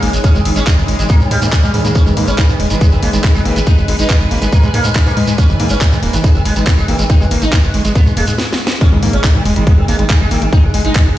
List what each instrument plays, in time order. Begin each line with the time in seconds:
Already playing: synth texture G#3 G#4, ambient pad D#4 G#4 C#5 B5
0.03 analog synth bass G#1, sitar G#3, acid bass A#3, open hi-hat
0.13 analog synth bass G#1, sitar G#3, acid bass G#3, closed hi-hat, shekere
0.24 acid bass G#3, sitar C#4, kick, closed hi-hat, shekere
0.35 analog synth bass G#1, sitar D#3, acid bass G#3, shekere
0.45 analog synth bass G#1, sitar D#3, open hi-hat
0.56 analog synth bass G#1, acid bass G#3, sitar C#4, closed hi-hat, shekere
0.67 sitar D#3, acid bass D#4, kick, clap, closed hi-hat, shekere
0.78 analog synth bass G#1, sitar D#3, shekere
0.88 analog synth bass G#1, acid bass G#3, open hi-hat
0.99 analog synth bass G#1, sitar D#3, acid bass G#3, closed hi-hat, shekere
1.09 sitar A#3, acid bass B3, kick, closed hi-hat, shekere
1.20 analog synth bass G#2, sitar D#3, shekere
1.31 analog synth bass G#2, sitar G3, acid bass G#3, open hi-hat
1.42 analog synth bass G#2, sitar D#3, acid bass A#3, closed hi-hat, shekere
1.53 sitar D#3, acid bass G#3, kick, clap, closed hi-hat, shekere
1.63 analog synth bass G#2, sitar G3, acid bass G#3, shekere
1.74 analog synth bass G#2, sitar D#3, acid bass G#3, open hi-hat
1.85 analog synth bass G#2, sitar D#3, acid bass A#3, closed hi-hat, shekere
1.95 acid bass G#3, sitar C#4, synth texture B4, kick, closed hi-hat, shekere
2.06 analog synth bass G#1, sitar D#3, acid bass G#3, shekere
2.17 analog synth bass G#2, sitar D#3, acid bass A#3, open hi-hat
2.28 analog synth bass G#1, acid bass G#3, sitar C#4, closed hi-hat, shekere
2.38 sitar D#3, acid bass D#4, kick, clap, closed hi-hat, shekere
2.49 analog synth bass G#2, sitar D#3, shekere
2.60 analog synth bass D#1, acid bass G#3, open hi-hat
2.70 analog synth bass G#1, sitar D#3, acid bass G#3, closed hi-hat, shekere
2.81 sitar G#3, acid bass B3, ambient pad G#5, kick, closed hi-hat, shekere
2.91 analog synth bass G#1, sitar D#3, shekere
3.03 analog synth bass G#1, sitar G#3, acid bass A#3, open hi-hat
3.13 analog synth bass G#1, sitar D#3, acid bass G#3, closed hi-hat, shekere
3.24 sitar D#3, acid bass G#3, kick, clap, closed hi-hat, shekere
3.35 analog synth bass G#1, acid bass G#3, sitar G#3, shekere
3.45 analog synth bass G#1, sitar D#3, acid bass A#3, open hi-hat
3.56 analog synth bass G#1, sitar D#3, acid bass G#3, closed hi-hat, shekere
3.67 acid bass D#4, sitar D#4, kick, closed hi-hat, shekere
3.77 analog synth bass G#1, sitar G#3, shekere
3.88 analog synth bass G#1, acid bass G#3, sitar G#3, open hi-hat
3.99 analog synth bass G#1, acid bass G#3, sitar D#4, closed hi-hat, shekere
4.09 sitar G#3, acid bass B3, kick, clap, closed hi-hat, shekere
4.20 analog synth bass G#1, sitar G#3, shekere
4.31 analog synth bass G#1, acid bass A#3, open hi-hat
4.42 analog synth bass G#1, acid bass G#3, sitar G#3, closed hi-hat, shekere
4.53 acid bass G#3, sitar A#3, kick, closed hi-hat, shekere
4.63 analog synth bass G#2, acid bass G#3, sitar G#3, shekere
4.74 analog synth bass G#2, acid bass A#3, sitar A#3, open hi-hat
4.84 analog synth bass G#2, acid bass G#3, sitar G#3, closed hi-hat, shekere
4.95 sitar G#3, acid bass D#4, kick, clap, closed hi-hat, shekere
5.06 analog synth bass G#2, sitar A#3, shekere
5.17 analog synth bass G#2, sitar G#3, acid bass G#3, open hi-hat
5.27 analog synth bass G#2, acid bass G#3, sitar G#3, closed hi-hat, shekere
5.38 acid bass B3, sitar C#4, kick, closed hi-hat, shekere
5.49 analog synth bass G#1, sitar D#3, shekere
5.60 analog synth bass G#2, sitar D#3, acid bass A#3, open hi-hat
5.70 analog synth bass G#1, acid bass G#3, sitar C#4, closed hi-hat, shekere
5.81 sitar D#3, acid bass G#3, kick, clap, closed hi-hat, shekere
5.92 analog synth bass G#2, sitar D#3, acid bass G#3, shekere
6.03 analog synth bass D#1, acid bass A#3, open hi-hat
6.13 analog synth bass G#1, sitar D#3, acid bass G#3, closed hi-hat, shekere
6.24 sitar G#3, acid bass D#4, ambient pad C#6, kick, closed hi-hat, shekere
6.35 analog synth bass G#1, sitar D#3, shekere
6.45 analog synth bass G#1, sitar G#3, acid bass G#3, open hi-hat
6.56 analog synth bass G#1, sitar D#3, acid bass G#3, closed hi-hat, shekere
6.67 sitar D#3, acid bass B3, kick, clap, closed hi-hat, shekere
6.77 analog synth bass G#1, sitar G#3, shekere
6.88 analog synth bass G#1, sitar D#3, acid bass A#3, open hi-hat
6.99 analog synth bass G#1, sitar D#3, acid bass G#3, closed hi-hat, shekere
7.10 acid bass G#3, sitar D#4, kick, closed hi-hat, shekere
7.20 analog synth bass G#1, acid bass G#3, sitar G#3, shekere
7.31 analog synth bass G#1, sitar G#3, acid bass A#3, open hi-hat
7.42 analog synth bass G#1, acid bass G#3, sitar D#4, closed hi-hat, shekere
7.53 sitar G#3, acid bass D#4, kick, clap, closed hi-hat, shekere
7.63 analog synth bass G#1, sitar G#3, shekere
7.74 analog synth bass G#1, acid bass G#3, open hi-hat
7.85 analog synth bass G#1, acid bass G#3, sitar G#3, closed hi-hat, shekere
7.95 acid bass B3, sitar B3, kick, closed hi-hat, shekere
8.06 analog synth bass G#2, sitar G#3, shekere
8.17 analog synth bass D#1, sitar G#3, acid bass A#3, open hi-hat
8.27 analog synth bass G#2, acid bass G#3, sitar G#3, closed hi-hat, shekere
8.38 snare
8.53 snare
8.67 snare
8.81 acid bass G#3, synth texture G#3 G#4, sitar C#4, ambient pad D#4, kick, closed hi-hat, impact
8.91 analog synth bass G#1, sitar D#3, acid bass G#3, ambient pad D#5
9.03 analog synth bass G#2, sitar D#3, acid bass A#3, open hi-hat
9.09 ambient pad G#4
9.13 analog synth bass G#1, acid bass G#3, sitar C#4, closed hi-hat
9.24 sitar D#3, acid bass D#4, kick, clap, closed hi-hat
9.35 analog synth bass G#2, sitar D#3
9.45 analog synth bass D#1, acid bass G#3, open hi-hat
9.56 analog synth bass G#1, sitar D#3, acid bass G#3, closed hi-hat
9.67 sitar G#3, acid bass B3, kick, closed hi-hat
9.78 analog synth bass G#1, sitar D#3
9.88 analog synth bass G#1, sitar G#3, acid bass A#3, open hi-hat
9.96 analog synth bass G#1, sitar D#3, acid bass G#3, ambient pad G#5, closed hi-hat
10.10 sitar D#3, acid bass G#3, kick, clap, closed hi-hat
10.20 analog synth bass G#1, acid bass G#3, sitar G#3
10.31 analog synth bass G#1, sitar D#3, acid bass A#3, open hi-hat
10.42 analog synth bass G#1, sitar D#3, acid bass G#3, closed hi-hat
10.53 acid bass D#4, sitar D#4, kick, closed hi-hat
10.63 analog synth bass G#1, sitar G#3
10.74 analog synth bass G#1, acid bass G#3, sitar G#3, open hi-hat
10.85 analog synth bass G#1, acid bass G#3, sitar D#4, closed hi-hat
10.95 sitar G#3, acid bass B3, kick, clap, closed hi-hat
11.06 analog synth bass G#1, sitar G#3